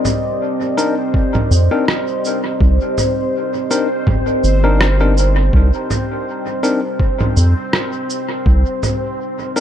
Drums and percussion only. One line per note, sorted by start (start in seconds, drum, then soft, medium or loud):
0.05 low conga medium
0.05 cabasa soft
0.78 cabasa medium
1.14 kick loud
1.35 low conga medium
1.51 cabasa medium
1.88 cross-stick medium
2.25 cabasa medium
2.61 kick loud
2.98 low conga medium
2.98 cabasa medium
3.71 cabasa medium
4.07 kick loud
4.07 low conga medium
4.44 cabasa medium
4.81 cross-stick medium
5.17 cabasa medium
5.53 kick loud
5.91 low conga medium
5.91 cabasa soft
6.64 cabasa medium
7.00 kick loud
7.21 low conga medium
7.37 cabasa medium
7.73 cross-stick medium
8.10 cabasa medium
8.46 kick loud
8.83 low conga medium
8.83 cabasa soft
9.56 cabasa medium